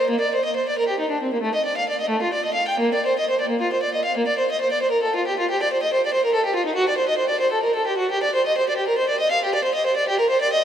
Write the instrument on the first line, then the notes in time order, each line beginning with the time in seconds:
violin
0.10 A#3
0.20 D5
0.35 C5
0.45 D#5
0.56 C5
0.69 D5
0.78 A#4
0.88 G4
1.00 D#4
1.10 D4
1.23 C4
1.33 A#3
1.42 A3
1.54 D#5
1.65 D5
1.77 F5
1.89 D5
2.00 D#5
2.09 A3
2.22 F4
2.33 D5
2.45 D#5
2.54 F5
2.68 G5
2.79 A#3
2.94 D5
3.06 C5
3.19 D#5
3.30 C5
3.40 D5
3.49 A#3
3.61 F4
3.73 C5
3.83 D5
3.94 D#5
4.05 F5
4.17 A#3
4.27 D5
4.38 C5
4.51 D#5
4.61 C5
4.72 D5
4.82 C5
4.91 A#4
5.03 A4
5.16 F4
5.27 G4
5.39 F4
5.50 G4
5.62 D5
5.73 C5
5.83 D#5
5.93 C5
6.06 D5
6.14 C5
6.25 A#4
6.34 A4
6.45 G4
6.56 F4
6.66 D#4
6.75 F#4
6.89 D5
6.98 C5
7.09 D#5
7.18 C5
7.29 D5
7.40 C5
7.52 A4
7.63 A#4
7.75 A4
7.87 G4
7.97 F#4
8.11 G4
8.23 D5
8.35 C5
8.46 D#5
8.58 C5
8.69 D5
8.77 G4
8.88 A#4
8.98 C5
9.09 D5
9.20 D#5
9.31 F5
9.44 G4
9.55 D5
9.64 C5
9.75 D#5
9.86 C5
9.96 D5
10.09 G4
10.19 A#4
10.30 C5
10.41 D5
10.53 D#5